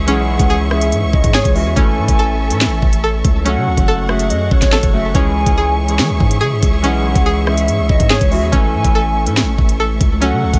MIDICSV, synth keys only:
0, 0, Header, 1, 2, 480
1, 0, Start_track
1, 0, Key_signature, 4, "minor"
1, 0, Tempo, 422535
1, 87, Time_signature, 4, 2, 24, 8
1, 12034, End_track
2, 0, Start_track
2, 0, Title_t, "Synth keys"
2, 0, Program_c, 0, 88
2, 0, Control_c, 0, 64, 127
2, 0, Note_on_c, 0, 52, 83
2, 0, Note_on_c, 0, 56, 70
2, 0, Note_on_c, 0, 61, 74
2, 0, Note_on_c, 0, 64, 79
2, 0, Note_on_c, 0, 68, 94
2, 68, Note_off_c, 0, 52, 0
2, 68, Note_on_c, 0, 52, 122
2, 76, Note_off_c, 0, 56, 0
2, 76, Note_on_c, 0, 56, 107
2, 83, Note_off_c, 0, 61, 0
2, 83, Note_on_c, 0, 61, 107
2, 91, Note_off_c, 0, 64, 0
2, 91, Note_on_c, 0, 64, 115
2, 98, Note_off_c, 0, 68, 0
2, 98, Note_on_c, 0, 68, 114
2, 648, Note_off_c, 0, 52, 0
2, 652, Note_off_c, 0, 56, 0
2, 655, Note_off_c, 0, 61, 0
2, 659, Note_off_c, 0, 64, 0
2, 663, Note_off_c, 0, 68, 0
2, 795, Note_on_c, 0, 52, 88
2, 803, Note_on_c, 0, 56, 87
2, 810, Note_on_c, 0, 61, 82
2, 818, Note_on_c, 0, 64, 81
2, 826, Note_on_c, 0, 68, 94
2, 1562, Note_off_c, 0, 52, 0
2, 1566, Note_off_c, 0, 56, 0
2, 1569, Note_off_c, 0, 61, 0
2, 1573, Note_off_c, 0, 64, 0
2, 1577, Note_off_c, 0, 68, 0
2, 1752, Note_on_c, 0, 52, 86
2, 1760, Note_on_c, 0, 56, 78
2, 1767, Note_on_c, 0, 61, 81
2, 1775, Note_on_c, 0, 64, 80
2, 1782, Note_on_c, 0, 66, 104
2, 1949, Note_off_c, 0, 52, 0
2, 1953, Note_off_c, 0, 56, 0
2, 1957, Note_off_c, 0, 61, 0
2, 1961, Note_off_c, 0, 64, 0
2, 1965, Note_off_c, 0, 66, 0
2, 1998, Note_on_c, 0, 52, 118
2, 2005, Note_on_c, 0, 57, 105
2, 2013, Note_on_c, 0, 61, 110
2, 2020, Note_on_c, 0, 64, 99
2, 2022, Control_c, 0, 64, 0
2, 2028, Note_on_c, 0, 69, 127
2, 2200, Control_c, 0, 64, 127
2, 2288, Note_off_c, 0, 52, 0
2, 2291, Note_off_c, 0, 57, 0
2, 2295, Note_off_c, 0, 61, 0
2, 2299, Note_off_c, 0, 64, 0
2, 2303, Note_off_c, 0, 69, 0
2, 2355, Note_on_c, 0, 52, 94
2, 2363, Note_on_c, 0, 57, 78
2, 2370, Note_on_c, 0, 61, 82
2, 2378, Note_on_c, 0, 64, 77
2, 2386, Note_on_c, 0, 69, 94
2, 2741, Note_off_c, 0, 52, 0
2, 2745, Note_off_c, 0, 57, 0
2, 2749, Note_off_c, 0, 61, 0
2, 2753, Note_off_c, 0, 64, 0
2, 2757, Note_off_c, 0, 69, 0
2, 2830, Note_on_c, 0, 52, 79
2, 2837, Note_on_c, 0, 57, 79
2, 2844, Note_on_c, 0, 61, 80
2, 2852, Note_on_c, 0, 64, 73
2, 2860, Note_on_c, 0, 69, 92
2, 3599, Note_off_c, 0, 52, 0
2, 3602, Note_off_c, 0, 57, 0
2, 3606, Note_off_c, 0, 61, 0
2, 3610, Note_off_c, 0, 64, 0
2, 3614, Note_off_c, 0, 69, 0
2, 3908, Note_on_c, 0, 54, 120
2, 3915, Note_on_c, 0, 57, 106
2, 3923, Note_on_c, 0, 61, 105
2, 3930, Note_on_c, 0, 66, 103
2, 3938, Note_on_c, 0, 69, 120
2, 3941, Control_c, 0, 64, 0
2, 4151, Control_c, 0, 64, 127
2, 4488, Note_off_c, 0, 54, 0
2, 4492, Note_off_c, 0, 57, 0
2, 4495, Note_off_c, 0, 61, 0
2, 4499, Note_off_c, 0, 66, 0
2, 4503, Note_off_c, 0, 69, 0
2, 4634, Note_on_c, 0, 54, 90
2, 4642, Note_on_c, 0, 57, 83
2, 4649, Note_on_c, 0, 61, 82
2, 4657, Note_on_c, 0, 66, 89
2, 4664, Note_on_c, 0, 68, 95
2, 5401, Note_off_c, 0, 54, 0
2, 5405, Note_off_c, 0, 57, 0
2, 5409, Note_off_c, 0, 61, 0
2, 5412, Note_off_c, 0, 66, 0
2, 5416, Note_off_c, 0, 68, 0
2, 5593, Note_on_c, 0, 54, 92
2, 5600, Note_on_c, 0, 57, 90
2, 5608, Note_on_c, 0, 61, 83
2, 5616, Note_on_c, 0, 66, 84
2, 5623, Note_on_c, 0, 69, 94
2, 5790, Note_off_c, 0, 54, 0
2, 5794, Note_off_c, 0, 57, 0
2, 5797, Note_off_c, 0, 61, 0
2, 5801, Note_off_c, 0, 66, 0
2, 5805, Note_off_c, 0, 69, 0
2, 5835, Note_on_c, 0, 52, 116
2, 5843, Note_on_c, 0, 56, 108
2, 5850, Note_on_c, 0, 61, 96
2, 5858, Note_on_c, 0, 64, 111
2, 5861, Control_c, 0, 64, 0
2, 5865, Note_on_c, 0, 68, 127
2, 6068, Control_c, 0, 64, 127
2, 6126, Note_off_c, 0, 52, 0
2, 6130, Note_off_c, 0, 56, 0
2, 6134, Note_off_c, 0, 61, 0
2, 6138, Note_off_c, 0, 64, 0
2, 6141, Note_off_c, 0, 68, 0
2, 6191, Note_on_c, 0, 52, 83
2, 6198, Note_on_c, 0, 56, 77
2, 6206, Note_on_c, 0, 61, 84
2, 6214, Note_on_c, 0, 64, 85
2, 6222, Note_on_c, 0, 68, 93
2, 6579, Note_off_c, 0, 52, 0
2, 6583, Note_off_c, 0, 56, 0
2, 6587, Note_off_c, 0, 61, 0
2, 6591, Note_off_c, 0, 64, 0
2, 6595, Note_off_c, 0, 68, 0
2, 6675, Note_on_c, 0, 52, 81
2, 6683, Note_on_c, 0, 56, 75
2, 6690, Note_on_c, 0, 61, 74
2, 6698, Note_on_c, 0, 64, 77
2, 6705, Note_on_c, 0, 68, 96
2, 7441, Note_off_c, 0, 52, 0
2, 7445, Note_off_c, 0, 56, 0
2, 7449, Note_off_c, 0, 61, 0
2, 7453, Note_off_c, 0, 64, 0
2, 7457, Note_off_c, 0, 68, 0
2, 7748, Note_on_c, 0, 52, 121
2, 7755, Note_on_c, 0, 56, 107
2, 7763, Note_on_c, 0, 61, 106
2, 7770, Note_on_c, 0, 64, 110
2, 7778, Note_on_c, 0, 68, 111
2, 8328, Note_off_c, 0, 52, 0
2, 8331, Note_off_c, 0, 56, 0
2, 8335, Note_off_c, 0, 61, 0
2, 8339, Note_off_c, 0, 64, 0
2, 8343, Note_off_c, 0, 68, 0
2, 8474, Note_on_c, 0, 52, 90
2, 8482, Note_on_c, 0, 56, 82
2, 8490, Note_on_c, 0, 61, 81
2, 8497, Note_on_c, 0, 64, 82
2, 8505, Note_on_c, 0, 68, 93
2, 9241, Note_off_c, 0, 52, 0
2, 9245, Note_off_c, 0, 56, 0
2, 9249, Note_off_c, 0, 61, 0
2, 9252, Note_off_c, 0, 64, 0
2, 9256, Note_off_c, 0, 68, 0
2, 9431, Note_on_c, 0, 52, 88
2, 9439, Note_on_c, 0, 56, 83
2, 9447, Note_on_c, 0, 61, 81
2, 9454, Note_on_c, 0, 64, 80
2, 9462, Note_on_c, 0, 66, 105
2, 9629, Note_off_c, 0, 52, 0
2, 9633, Note_off_c, 0, 56, 0
2, 9637, Note_off_c, 0, 61, 0
2, 9641, Note_off_c, 0, 64, 0
2, 9645, Note_off_c, 0, 66, 0
2, 9677, Note_on_c, 0, 52, 116
2, 9685, Note_on_c, 0, 57, 105
2, 9693, Note_on_c, 0, 61, 112
2, 9700, Note_on_c, 0, 64, 103
2, 9701, Control_c, 0, 64, 0
2, 9708, Note_on_c, 0, 69, 127
2, 9928, Control_c, 0, 64, 127
2, 9967, Note_off_c, 0, 52, 0
2, 9971, Note_off_c, 0, 57, 0
2, 9975, Note_off_c, 0, 61, 0
2, 9979, Note_off_c, 0, 64, 0
2, 9982, Note_off_c, 0, 69, 0
2, 10034, Note_on_c, 0, 52, 91
2, 10042, Note_on_c, 0, 57, 79
2, 10049, Note_on_c, 0, 61, 78
2, 10057, Note_on_c, 0, 64, 81
2, 10065, Note_on_c, 0, 69, 95
2, 10421, Note_off_c, 0, 52, 0
2, 10425, Note_off_c, 0, 57, 0
2, 10428, Note_off_c, 0, 61, 0
2, 10432, Note_off_c, 0, 64, 0
2, 10436, Note_off_c, 0, 69, 0
2, 10508, Note_on_c, 0, 52, 79
2, 10516, Note_on_c, 0, 57, 78
2, 10523, Note_on_c, 0, 61, 78
2, 10531, Note_on_c, 0, 64, 73
2, 10539, Note_on_c, 0, 69, 93
2, 11278, Note_off_c, 0, 52, 0
2, 11282, Note_off_c, 0, 57, 0
2, 11286, Note_off_c, 0, 61, 0
2, 11289, Note_off_c, 0, 64, 0
2, 11293, Note_off_c, 0, 69, 0
2, 11587, Note_on_c, 0, 54, 120
2, 11594, Note_on_c, 0, 57, 108
2, 11602, Note_on_c, 0, 61, 104
2, 11610, Note_on_c, 0, 66, 102
2, 11617, Note_on_c, 0, 69, 120
2, 11619, Control_c, 0, 64, 0
2, 11827, Control_c, 0, 64, 127
2, 12034, Note_off_c, 0, 54, 0
2, 12034, Note_off_c, 0, 57, 0
2, 12034, Note_off_c, 0, 61, 0
2, 12034, Note_off_c, 0, 66, 0
2, 12034, Note_off_c, 0, 69, 0
2, 12034, End_track
0, 0, End_of_file